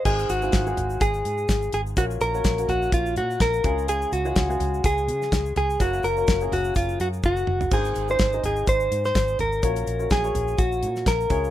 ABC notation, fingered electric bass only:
X:1
M:4/4
L:1/8
Q:"Swing 16ths" 1/4=125
K:Gblyd
V:1 name="Fingered electric bass" clef=bass
A,,, A,,, A,,, A,,, A,,, A,, A,,, A,,, | B,,, B,,, B,,, B,,, B,,, B,, B,,, D,,- | D,, D,, D,, D,, D,, D, D,, D,, | G,,, G,,, G,,, G,,, G,,, G,, G,,, G,,, |
A,,, A,,, A,,, A,,, A,,, A,, A,,, A,,, | B,,, B,,, B,,, B,,, B,,, B,, B,,, D,, |]